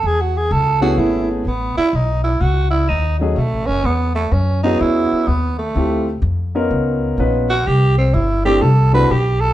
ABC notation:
X:1
M:4/4
L:1/8
Q:"Swing" 1/4=126
K:E
V:1 name="Tenor saxophone"
(3G F G A F E G, B, E | D E F E D F, A, C | B, A, C D E2 B, A,- | A,2 z4 z F |
=G =C E G A B G A |]
V:2 name="Grand piano"
z3 [A,B,CEG]3 z2 | z4 z [A,CDFG] z2 | z3 [B,CEFG]3 z2 | [A,=CE=F=G] z2 [B,^CDF^A]3 [B,CD^EB] z |
z3 [A,=C=DE=G] z [A,CDEF] z2 |]
V:3 name="Upright bass" clef=bass
E,,2 C,,2 G,,,2 A,,, z | B,,,2 C,,2 D,,2 (3B,,, A,,, F,,, | E,,2 F,,2 E,, z D,,2 | =D,,2 =F,,2 C,,2 ^A,,,2 |
=C,,2 =G,,,2 C,,2 B,,,2 |]